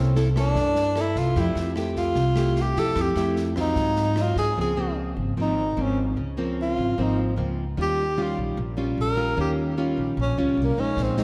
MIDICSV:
0, 0, Header, 1, 5, 480
1, 0, Start_track
1, 0, Key_signature, -1, "major"
1, 0, Tempo, 400561
1, 1633, Time_signature, 4, 2, 24, 8
1, 5473, Key_signature, -5, "major"
1, 13466, End_track
2, 0, Start_track
2, 0, Title_t, "Tenor saxophone"
2, 0, Program_c, 0, 66
2, 0, Note_on_c, 0, 60, 70
2, 226, Note_off_c, 0, 60, 0
2, 470, Note_on_c, 0, 62, 90
2, 1208, Note_on_c, 0, 64, 78
2, 1226, Note_off_c, 0, 62, 0
2, 1415, Note_on_c, 0, 65, 88
2, 1433, Note_off_c, 0, 64, 0
2, 1677, Note_on_c, 0, 64, 70
2, 1695, Note_off_c, 0, 65, 0
2, 2135, Note_off_c, 0, 64, 0
2, 2369, Note_on_c, 0, 65, 83
2, 3137, Note_on_c, 0, 67, 87
2, 3155, Note_off_c, 0, 65, 0
2, 3346, Note_on_c, 0, 69, 107
2, 3364, Note_off_c, 0, 67, 0
2, 3615, Note_on_c, 0, 67, 81
2, 3633, Note_off_c, 0, 69, 0
2, 4064, Note_off_c, 0, 67, 0
2, 4318, Note_on_c, 0, 63, 95
2, 5051, Note_on_c, 0, 65, 84
2, 5069, Note_off_c, 0, 63, 0
2, 5245, Note_off_c, 0, 65, 0
2, 5252, Note_on_c, 0, 68, 92
2, 5466, Note_off_c, 0, 68, 0
2, 5525, Note_on_c, 0, 68, 67
2, 5947, Note_off_c, 0, 68, 0
2, 6488, Note_on_c, 0, 63, 72
2, 6972, Note_on_c, 0, 61, 69
2, 6990, Note_off_c, 0, 63, 0
2, 7183, Note_off_c, 0, 61, 0
2, 7929, Note_on_c, 0, 65, 81
2, 8413, Note_on_c, 0, 63, 72
2, 8431, Note_off_c, 0, 65, 0
2, 8623, Note_off_c, 0, 63, 0
2, 9368, Note_on_c, 0, 67, 79
2, 9853, Note_on_c, 0, 65, 72
2, 9871, Note_off_c, 0, 67, 0
2, 10063, Note_off_c, 0, 65, 0
2, 10799, Note_on_c, 0, 70, 90
2, 11224, Note_off_c, 0, 70, 0
2, 11273, Note_on_c, 0, 67, 66
2, 11405, Note_off_c, 0, 67, 0
2, 12238, Note_on_c, 0, 61, 73
2, 12440, Note_off_c, 0, 61, 0
2, 12468, Note_on_c, 0, 53, 42
2, 12660, Note_off_c, 0, 53, 0
2, 12736, Note_on_c, 0, 58, 81
2, 12947, Note_on_c, 0, 61, 90
2, 12964, Note_off_c, 0, 58, 0
2, 13207, Note_on_c, 0, 60, 74
2, 13225, Note_off_c, 0, 61, 0
2, 13466, Note_off_c, 0, 60, 0
2, 13466, End_track
3, 0, Start_track
3, 0, Title_t, "Nylon-string guitar"
3, 0, Program_c, 1, 24
3, 0, Note_on_c, 1, 48, 49
3, 0, Note_on_c, 1, 58, 49
3, 0, Note_on_c, 1, 64, 55
3, 0, Note_on_c, 1, 69, 59
3, 152, Note_off_c, 1, 58, 0
3, 155, Note_off_c, 1, 64, 0
3, 157, Note_off_c, 1, 69, 0
3, 189, Note_on_c, 1, 58, 57
3, 195, Note_on_c, 1, 64, 62
3, 199, Note_on_c, 1, 69, 64
3, 332, Note_off_c, 1, 58, 0
3, 335, Note_off_c, 1, 64, 0
3, 337, Note_off_c, 1, 69, 0
3, 434, Note_on_c, 1, 58, 58
3, 438, Note_on_c, 1, 64, 57
3, 445, Note_on_c, 1, 69, 73
3, 647, Note_off_c, 1, 48, 0
3, 671, Note_on_c, 1, 43, 57
3, 1116, Note_off_c, 1, 64, 0
3, 1117, Note_off_c, 1, 58, 0
3, 1117, Note_off_c, 1, 69, 0
3, 1157, Note_on_c, 1, 58, 49
3, 1164, Note_on_c, 1, 64, 49
3, 1170, Note_on_c, 1, 69, 59
3, 1608, Note_off_c, 1, 43, 0
3, 1617, Note_off_c, 1, 58, 0
3, 1617, Note_off_c, 1, 64, 0
3, 1622, Note_off_c, 1, 69, 0
3, 1638, Note_on_c, 1, 53, 52
3, 1643, Note_on_c, 1, 57, 57
3, 1643, Note_on_c, 1, 64, 59
3, 1646, Note_on_c, 1, 67, 59
3, 2079, Note_off_c, 1, 57, 0
3, 2079, Note_off_c, 1, 64, 0
3, 2081, Note_off_c, 1, 67, 0
3, 2113, Note_on_c, 1, 57, 56
3, 2119, Note_on_c, 1, 64, 65
3, 2125, Note_on_c, 1, 67, 68
3, 2572, Note_off_c, 1, 53, 0
3, 2591, Note_off_c, 1, 57, 0
3, 2592, Note_on_c, 1, 48, 57
3, 2593, Note_off_c, 1, 64, 0
3, 2596, Note_off_c, 1, 67, 0
3, 2832, Note_on_c, 1, 57, 62
3, 2835, Note_on_c, 1, 64, 59
3, 2842, Note_on_c, 1, 67, 70
3, 3274, Note_off_c, 1, 57, 0
3, 3275, Note_off_c, 1, 64, 0
3, 3279, Note_off_c, 1, 67, 0
3, 3316, Note_on_c, 1, 57, 56
3, 3324, Note_on_c, 1, 64, 67
3, 3328, Note_on_c, 1, 67, 67
3, 3529, Note_off_c, 1, 48, 0
3, 3551, Note_on_c, 1, 53, 52
3, 3757, Note_off_c, 1, 57, 0
3, 3759, Note_off_c, 1, 64, 0
3, 3762, Note_off_c, 1, 67, 0
3, 3790, Note_on_c, 1, 57, 65
3, 3798, Note_on_c, 1, 64, 67
3, 3803, Note_on_c, 1, 67, 58
3, 4233, Note_off_c, 1, 57, 0
3, 4238, Note_off_c, 1, 64, 0
3, 4238, Note_off_c, 1, 67, 0
3, 4268, Note_off_c, 1, 53, 0
3, 4273, Note_on_c, 1, 54, 64
3, 4278, Note_on_c, 1, 60, 67
3, 4285, Note_on_c, 1, 65, 77
3, 4516, Note_on_c, 1, 44, 55
3, 4955, Note_off_c, 1, 54, 0
3, 4956, Note_off_c, 1, 60, 0
3, 4961, Note_off_c, 1, 65, 0
3, 5000, Note_on_c, 1, 54, 57
3, 5003, Note_on_c, 1, 60, 54
3, 5010, Note_on_c, 1, 65, 67
3, 5438, Note_off_c, 1, 60, 0
3, 5439, Note_off_c, 1, 54, 0
3, 5443, Note_off_c, 1, 65, 0
3, 5450, Note_off_c, 1, 44, 0
3, 5480, Note_on_c, 1, 53, 51
3, 5486, Note_on_c, 1, 49, 48
3, 5487, Note_on_c, 1, 58, 50
3, 5495, Note_on_c, 1, 60, 63
3, 5678, Note_off_c, 1, 53, 0
3, 5680, Note_off_c, 1, 58, 0
3, 5685, Note_off_c, 1, 60, 0
3, 5708, Note_on_c, 1, 53, 61
3, 5717, Note_on_c, 1, 58, 61
3, 5719, Note_on_c, 1, 60, 72
3, 6393, Note_off_c, 1, 53, 0
3, 6394, Note_off_c, 1, 58, 0
3, 6398, Note_off_c, 1, 60, 0
3, 6415, Note_off_c, 1, 49, 0
3, 6434, Note_on_c, 1, 44, 53
3, 6439, Note_on_c, 1, 53, 48
3, 6445, Note_on_c, 1, 58, 52
3, 6445, Note_on_c, 1, 60, 52
3, 6745, Note_off_c, 1, 53, 0
3, 6747, Note_off_c, 1, 58, 0
3, 6748, Note_off_c, 1, 60, 0
3, 6909, Note_on_c, 1, 53, 49
3, 6916, Note_on_c, 1, 58, 54
3, 6921, Note_on_c, 1, 60, 58
3, 7370, Note_off_c, 1, 44, 0
3, 7388, Note_off_c, 1, 53, 0
3, 7389, Note_on_c, 1, 49, 58
3, 7392, Note_off_c, 1, 58, 0
3, 7393, Note_off_c, 1, 60, 0
3, 7636, Note_on_c, 1, 53, 57
3, 7641, Note_on_c, 1, 58, 60
3, 7648, Note_on_c, 1, 60, 62
3, 8316, Note_off_c, 1, 53, 0
3, 8319, Note_off_c, 1, 58, 0
3, 8322, Note_off_c, 1, 60, 0
3, 8327, Note_off_c, 1, 49, 0
3, 8359, Note_on_c, 1, 44, 50
3, 8363, Note_on_c, 1, 53, 57
3, 8368, Note_on_c, 1, 58, 51
3, 8376, Note_on_c, 1, 60, 61
3, 8798, Note_off_c, 1, 53, 0
3, 8803, Note_off_c, 1, 58, 0
3, 8805, Note_off_c, 1, 60, 0
3, 8825, Note_on_c, 1, 53, 48
3, 8837, Note_on_c, 1, 58, 53
3, 8841, Note_on_c, 1, 60, 58
3, 9152, Note_off_c, 1, 53, 0
3, 9158, Note_off_c, 1, 58, 0
3, 9159, Note_off_c, 1, 60, 0
3, 9293, Note_off_c, 1, 44, 0
3, 9316, Note_on_c, 1, 51, 57
3, 9318, Note_on_c, 1, 55, 56
3, 9322, Note_on_c, 1, 61, 50
3, 9328, Note_on_c, 1, 65, 66
3, 9624, Note_off_c, 1, 55, 0
3, 9625, Note_off_c, 1, 61, 0
3, 9627, Note_off_c, 1, 65, 0
3, 9794, Note_on_c, 1, 55, 59
3, 9802, Note_on_c, 1, 61, 56
3, 9803, Note_on_c, 1, 65, 66
3, 10252, Note_off_c, 1, 51, 0
3, 10270, Note_on_c, 1, 46, 50
3, 10271, Note_off_c, 1, 55, 0
3, 10273, Note_off_c, 1, 61, 0
3, 10275, Note_off_c, 1, 65, 0
3, 10508, Note_on_c, 1, 55, 57
3, 10516, Note_on_c, 1, 61, 60
3, 10521, Note_on_c, 1, 65, 59
3, 10952, Note_off_c, 1, 55, 0
3, 10956, Note_off_c, 1, 65, 0
3, 10957, Note_off_c, 1, 61, 0
3, 10984, Note_on_c, 1, 55, 66
3, 10991, Note_on_c, 1, 61, 59
3, 10993, Note_on_c, 1, 65, 65
3, 11190, Note_off_c, 1, 55, 0
3, 11191, Note_off_c, 1, 61, 0
3, 11194, Note_off_c, 1, 65, 0
3, 11207, Note_off_c, 1, 46, 0
3, 11225, Note_on_c, 1, 51, 50
3, 11227, Note_on_c, 1, 55, 53
3, 11234, Note_on_c, 1, 61, 53
3, 11236, Note_on_c, 1, 65, 57
3, 11671, Note_off_c, 1, 55, 0
3, 11673, Note_off_c, 1, 61, 0
3, 11676, Note_off_c, 1, 65, 0
3, 11713, Note_on_c, 1, 55, 62
3, 11718, Note_on_c, 1, 61, 60
3, 11722, Note_on_c, 1, 65, 59
3, 12166, Note_off_c, 1, 51, 0
3, 12188, Note_on_c, 1, 46, 52
3, 12190, Note_off_c, 1, 55, 0
3, 12193, Note_off_c, 1, 61, 0
3, 12193, Note_off_c, 1, 65, 0
3, 12434, Note_on_c, 1, 55, 51
3, 12443, Note_on_c, 1, 61, 66
3, 12444, Note_on_c, 1, 65, 62
3, 12875, Note_off_c, 1, 55, 0
3, 12877, Note_off_c, 1, 61, 0
3, 12880, Note_off_c, 1, 65, 0
3, 12913, Note_on_c, 1, 56, 50
3, 12921, Note_on_c, 1, 63, 62
3, 13126, Note_off_c, 1, 46, 0
3, 13162, Note_on_c, 1, 46, 56
3, 13377, Note_off_c, 1, 56, 0
3, 13390, Note_off_c, 1, 63, 0
3, 13391, Note_on_c, 1, 56, 52
3, 13404, Note_on_c, 1, 63, 66
3, 13466, Note_off_c, 1, 46, 0
3, 13466, Note_off_c, 1, 56, 0
3, 13466, Note_off_c, 1, 63, 0
3, 13466, End_track
4, 0, Start_track
4, 0, Title_t, "Upright bass"
4, 0, Program_c, 2, 32
4, 0, Note_on_c, 2, 36, 99
4, 621, Note_off_c, 2, 36, 0
4, 666, Note_on_c, 2, 43, 80
4, 1342, Note_off_c, 2, 43, 0
4, 1388, Note_on_c, 2, 36, 81
4, 1614, Note_off_c, 2, 36, 0
4, 1628, Note_on_c, 2, 41, 99
4, 1854, Note_off_c, 2, 41, 0
4, 1860, Note_on_c, 2, 41, 98
4, 2538, Note_off_c, 2, 41, 0
4, 2579, Note_on_c, 2, 36, 93
4, 3258, Note_off_c, 2, 36, 0
4, 3308, Note_on_c, 2, 41, 85
4, 3533, Note_off_c, 2, 41, 0
4, 3541, Note_on_c, 2, 41, 103
4, 3770, Note_off_c, 2, 41, 0
4, 3780, Note_on_c, 2, 41, 104
4, 4459, Note_off_c, 2, 41, 0
4, 4504, Note_on_c, 2, 44, 90
4, 5181, Note_off_c, 2, 44, 0
4, 5224, Note_on_c, 2, 44, 80
4, 5451, Note_off_c, 2, 44, 0
4, 5470, Note_on_c, 2, 37, 86
4, 6144, Note_off_c, 2, 37, 0
4, 6191, Note_on_c, 2, 32, 80
4, 6415, Note_off_c, 2, 32, 0
4, 6436, Note_on_c, 2, 32, 85
4, 6881, Note_off_c, 2, 32, 0
4, 6914, Note_on_c, 2, 32, 90
4, 7360, Note_off_c, 2, 32, 0
4, 7392, Note_on_c, 2, 37, 81
4, 8065, Note_off_c, 2, 37, 0
4, 8119, Note_on_c, 2, 32, 82
4, 8339, Note_off_c, 2, 32, 0
4, 8362, Note_on_c, 2, 32, 80
4, 8804, Note_off_c, 2, 32, 0
4, 8837, Note_on_c, 2, 37, 88
4, 9281, Note_off_c, 2, 37, 0
4, 9313, Note_on_c, 2, 39, 88
4, 9985, Note_off_c, 2, 39, 0
4, 10037, Note_on_c, 2, 34, 71
4, 10258, Note_off_c, 2, 34, 0
4, 10273, Note_on_c, 2, 34, 93
4, 10719, Note_off_c, 2, 34, 0
4, 10755, Note_on_c, 2, 34, 78
4, 11200, Note_off_c, 2, 34, 0
4, 11227, Note_on_c, 2, 39, 83
4, 11902, Note_off_c, 2, 39, 0
4, 11950, Note_on_c, 2, 34, 74
4, 12174, Note_off_c, 2, 34, 0
4, 12188, Note_on_c, 2, 34, 88
4, 12413, Note_off_c, 2, 34, 0
4, 12436, Note_on_c, 2, 37, 73
4, 12650, Note_off_c, 2, 37, 0
4, 12668, Note_on_c, 2, 36, 82
4, 12886, Note_off_c, 2, 36, 0
4, 12910, Note_on_c, 2, 34, 77
4, 13127, Note_off_c, 2, 34, 0
4, 13143, Note_on_c, 2, 34, 83
4, 13466, Note_off_c, 2, 34, 0
4, 13466, End_track
5, 0, Start_track
5, 0, Title_t, "Drums"
5, 191, Note_on_c, 9, 38, 23
5, 310, Note_off_c, 9, 38, 0
5, 428, Note_on_c, 9, 36, 22
5, 431, Note_on_c, 9, 37, 54
5, 431, Note_on_c, 9, 38, 21
5, 548, Note_off_c, 9, 36, 0
5, 551, Note_off_c, 9, 37, 0
5, 551, Note_off_c, 9, 38, 0
5, 665, Note_on_c, 9, 38, 25
5, 666, Note_on_c, 9, 36, 63
5, 785, Note_off_c, 9, 38, 0
5, 786, Note_off_c, 9, 36, 0
5, 905, Note_on_c, 9, 38, 23
5, 1025, Note_off_c, 9, 38, 0
5, 1146, Note_on_c, 9, 37, 54
5, 1146, Note_on_c, 9, 38, 20
5, 1266, Note_off_c, 9, 37, 0
5, 1266, Note_off_c, 9, 38, 0
5, 1386, Note_on_c, 9, 36, 25
5, 1386, Note_on_c, 9, 38, 24
5, 1506, Note_off_c, 9, 36, 0
5, 1506, Note_off_c, 9, 38, 0
5, 1624, Note_on_c, 9, 38, 21
5, 1625, Note_on_c, 9, 36, 51
5, 1744, Note_off_c, 9, 38, 0
5, 1745, Note_off_c, 9, 36, 0
5, 1868, Note_on_c, 9, 38, 28
5, 1987, Note_off_c, 9, 38, 0
5, 2107, Note_on_c, 9, 37, 59
5, 2107, Note_on_c, 9, 38, 22
5, 2226, Note_off_c, 9, 37, 0
5, 2226, Note_off_c, 9, 38, 0
5, 2345, Note_on_c, 9, 36, 23
5, 2348, Note_on_c, 9, 38, 24
5, 2465, Note_off_c, 9, 36, 0
5, 2468, Note_off_c, 9, 38, 0
5, 2579, Note_on_c, 9, 38, 23
5, 2584, Note_on_c, 9, 36, 61
5, 2699, Note_off_c, 9, 38, 0
5, 2704, Note_off_c, 9, 36, 0
5, 2824, Note_on_c, 9, 37, 64
5, 2824, Note_on_c, 9, 38, 27
5, 2944, Note_off_c, 9, 37, 0
5, 2944, Note_off_c, 9, 38, 0
5, 3065, Note_on_c, 9, 38, 21
5, 3185, Note_off_c, 9, 38, 0
5, 3307, Note_on_c, 9, 36, 24
5, 3311, Note_on_c, 9, 38, 23
5, 3427, Note_off_c, 9, 36, 0
5, 3431, Note_off_c, 9, 38, 0
5, 3544, Note_on_c, 9, 37, 52
5, 3544, Note_on_c, 9, 38, 20
5, 3547, Note_on_c, 9, 36, 47
5, 3664, Note_off_c, 9, 37, 0
5, 3664, Note_off_c, 9, 38, 0
5, 3667, Note_off_c, 9, 36, 0
5, 3788, Note_on_c, 9, 38, 28
5, 3908, Note_off_c, 9, 38, 0
5, 4027, Note_on_c, 9, 38, 24
5, 4147, Note_off_c, 9, 38, 0
5, 4265, Note_on_c, 9, 37, 53
5, 4265, Note_on_c, 9, 38, 25
5, 4267, Note_on_c, 9, 36, 23
5, 4385, Note_off_c, 9, 37, 0
5, 4385, Note_off_c, 9, 38, 0
5, 4386, Note_off_c, 9, 36, 0
5, 4501, Note_on_c, 9, 38, 24
5, 4506, Note_on_c, 9, 36, 64
5, 4621, Note_off_c, 9, 38, 0
5, 4626, Note_off_c, 9, 36, 0
5, 4744, Note_on_c, 9, 38, 23
5, 4864, Note_off_c, 9, 38, 0
5, 4984, Note_on_c, 9, 37, 56
5, 4984, Note_on_c, 9, 38, 21
5, 5104, Note_off_c, 9, 37, 0
5, 5104, Note_off_c, 9, 38, 0
5, 5228, Note_on_c, 9, 36, 23
5, 5229, Note_on_c, 9, 38, 24
5, 5348, Note_off_c, 9, 36, 0
5, 5349, Note_off_c, 9, 38, 0
5, 13144, Note_on_c, 9, 36, 53
5, 13147, Note_on_c, 9, 38, 22
5, 13264, Note_off_c, 9, 36, 0
5, 13266, Note_off_c, 9, 38, 0
5, 13385, Note_on_c, 9, 38, 27
5, 13466, Note_off_c, 9, 38, 0
5, 13466, End_track
0, 0, End_of_file